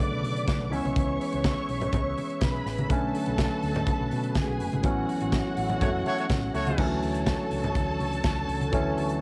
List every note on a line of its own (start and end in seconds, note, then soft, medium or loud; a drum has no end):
0.00 0.69 C#3 medium
0.00 0.68 D3 medium
0.00 0.68 F#3 medium
0.00 0.69 A3 medium
0.00 0.70 B3 medium
0.00 0.70 F#4 medium
0.00 0.68 A4 medium
0.00 0.68 B4 medium
0.00 0.70 D5 medium
0.00 0.70 D6 loud
0.00 closed hi-hat medium
0.00 muted conga medium
0.12 0.22 B1 medium
0.23 0.43 B2 medium
0.23 open hi-hat medium
0.37 closed hi-hat soft
0.48 kick loud
0.48 snare loud
0.48 closed hi-hat medium
0.48 high conga medium
0.60 0.72 B1 medium
0.70 0.83 C#2 loud
0.70 2.61 E3 medium
0.70 2.62 G#3 medium
0.70 2.62 B3 medium
0.70 2.88 C#4 medium
0.70 2.63 C#4 medium
0.70 2.88 G#4 medium
0.70 2.88 B4 medium
0.70 2.38 C#5 medium
0.70 2.88 E5 medium
0.70 2.38 C#6 medium
0.70 open hi-hat medium
0.84 0.94 B1 medium
0.84 closed hi-hat soft
0.84 high conga medium
0.96 1.16 C#2 medium
0.96 kick loud
0.96 closed hi-hat medium
0.96 muted conga soft
1.21 open hi-hat medium
1.33 1.54 C#2 medium
1.33 closed hi-hat soft
1.44 kick loud
1.44 snare loud
1.44 closed hi-hat medium
1.44 high conga medium
1.69 1.89 B1 medium
1.69 open hi-hat medium
1.81 closed hi-hat soft
1.81 low conga medium
1.93 2.13 C#2 loud
1.93 kick loud
1.93 closed hi-hat medium
1.93 muted conga medium
1.93 low conga medium
2.18 open hi-hat medium
2.18 muted conga soft
2.30 closed hi-hat soft
2.41 2.62 B1 medium
2.41 2.89 B4 medium
2.41 2.89 B5 medium
2.41 kick loud
2.41 snare loud
2.41 closed hi-hat medium
2.41 high conga medium
2.66 2.86 A1 loud
2.66 snare soft
2.66 open hi-hat medium
2.78 closed hi-hat soft
2.78 high conga medium
2.89 3.10 B1 loud
2.89 4.80 D3 medium
2.89 4.80 F#3 medium
2.89 4.82 A3 medium
2.89 4.81 A3 medium
2.89 4.82 B3 medium
2.89 4.81 C#4 medium
2.89 6.74 F#4 medium
2.89 4.32 A4 medium
2.89 4.82 B4 medium
2.89 4.32 A5 medium
2.89 kick loud
2.89 closed hi-hat medium
2.89 muted conga soft
3.15 open hi-hat medium
3.26 3.47 B1 loud
3.26 closed hi-hat soft
3.38 kick medium
3.38 snare loud
3.38 closed hi-hat medium
3.38 high conga medium
3.63 3.83 D2 medium
3.63 open hi-hat medium
3.75 closed hi-hat soft
3.75 low conga medium
3.87 kick loud
3.87 closed hi-hat medium
3.87 muted conga medium
4.00 4.10 B1 medium
4.11 4.32 B2 medium
4.11 open hi-hat medium
4.11 muted conga soft
4.24 closed hi-hat soft
4.35 4.83 G#4 medium
4.35 4.83 G#5 medium
4.35 kick loud
4.35 snare loud
4.35 closed hi-hat medium
4.35 high conga medium
4.49 4.58 B1 medium
4.60 4.71 F#1 medium
4.60 open hi-hat medium
4.72 4.84 G#1 medium
4.72 closed hi-hat soft
4.72 high conga medium
4.83 5.04 A1 medium
4.83 6.74 E3 medium
4.83 6.74 F#3 medium
4.83 6.77 A3 medium
4.83 6.75 B3 medium
4.83 6.75 C#4 medium
4.83 6.77 E4 medium
4.83 6.74 F#4 medium
4.83 6.77 C#5 medium
4.83 6.75 F#5 medium
4.83 kick loud
4.83 closed hi-hat medium
4.83 muted conga medium
5.09 open hi-hat medium
5.21 5.41 A1 loud
5.21 closed hi-hat medium
5.32 kick medium
5.32 snare loud
5.32 closed hi-hat medium
5.32 high conga medium
5.57 5.77 A1 medium
5.57 open hi-hat medium
5.69 closed hi-hat soft
5.69 low conga medium
5.81 6.01 F#1 loud
5.81 5.90 A3 medium
5.81 5.89 F#4 medium
5.81 5.89 C#5 medium
5.81 kick loud
5.81 closed hi-hat medium
5.81 muted conga medium
5.81 low conga medium
6.06 6.14 A3 medium
6.06 6.14 F#4 medium
6.06 6.14 C#5 loud
6.06 open hi-hat soft
6.06 muted conga soft
6.18 6.25 A3 medium
6.18 6.26 F#4 medium
6.18 6.26 C#5 medium
6.18 closed hi-hat soft
6.29 6.50 A1 medium
6.29 kick loud
6.29 snare loud
6.29 closed hi-hat medium
6.29 high conga medium
6.54 6.74 C#2 medium
6.54 6.86 A3 loud
6.54 6.86 F#4 medium
6.54 6.86 C#5 medium
6.54 open hi-hat medium
6.66 closed hi-hat soft
6.66 high conga medium
6.77 6.98 D2 medium
6.77 9.21 D3 medium
6.77 8.68 E3 medium
6.77 8.69 F#3 medium
6.77 8.69 A3 medium
6.77 9.21 C#4 medium
6.77 8.70 C#4 medium
6.77 9.21 F#4 medium
6.77 9.21 A4 medium
6.77 9.21 C#5 medium
6.77 9.21 A5 loud
6.77 kick loud
6.77 crash medium
6.77 muted conga soft
7.03 7.33 D2 medium
7.03 open hi-hat medium
7.14 closed hi-hat medium
7.26 kick medium
7.26 snare loud
7.26 closed hi-hat medium
7.26 high conga medium
7.51 7.71 C#2 medium
7.51 open hi-hat medium
7.63 closed hi-hat soft
7.63 low conga medium
7.75 7.96 D2 medium
7.75 kick loud
7.75 closed hi-hat medium
7.75 muted conga medium
7.99 8.20 C#2 medium
7.99 open hi-hat medium
7.99 muted conga soft
8.13 closed hi-hat soft
8.24 8.44 C#2 medium
8.24 kick loud
8.24 snare loud
8.24 closed hi-hat medium
8.24 high conga medium
8.48 8.68 C#2 medium
8.48 open hi-hat medium
8.61 closed hi-hat soft
8.61 high conga medium
8.72 8.93 D2 medium
8.72 9.21 E3 medium
8.72 9.21 F#3 medium
8.72 9.21 A3 medium
8.72 9.21 C#4 medium
8.72 kick loud
8.72 closed hi-hat medium
8.72 muted conga medium
8.97 9.21 D2 medium
8.97 open hi-hat medium
9.09 closed hi-hat soft